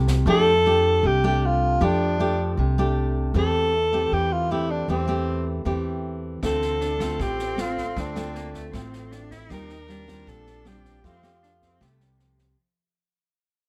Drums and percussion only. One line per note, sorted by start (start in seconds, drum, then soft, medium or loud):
0.08 kick soft
0.08 snare soft
6.43 kick medium
6.43 cross-stick medium
6.43 snare soft
6.62 snare soft
6.81 snare soft
7.00 kick soft
7.00 cross-stick medium
7.00 snare soft
7.20 kick medium
7.20 snare soft
7.39 snare soft
7.58 cross-stick medium
7.58 snare soft
7.77 kick soft
7.77 snare soft
7.97 kick medium
7.97 snare soft
8.16 cross-stick medium
8.16 snare soft
8.35 snare soft
8.54 kick soft
8.54 snare soft
8.73 kick medium
8.73 cross-stick medium
8.73 snare soft
8.93 snare soft
9.12 snare soft
9.31 kick soft
9.31 snare soft
9.50 kick medium
9.50 cross-stick medium
9.50 snare soft
9.69 snare soft
9.89 snare soft
10.08 kick soft
10.08 cross-stick medium
10.08 snare soft
10.27 kick medium
10.27 snare soft
10.47 snare soft
10.65 cross-stick medium
10.65 snare soft
10.85 kick soft
10.85 snare soft
11.04 kick medium
11.04 snare soft
11.23 cross-stick medium
11.23 snare soft
11.43 snare soft
11.62 kick soft
11.62 snare soft
11.81 kick medium
11.81 cross-stick medium
11.81 snare soft
12.00 snare soft
12.19 snare soft
12.39 kick soft
12.39 snare soft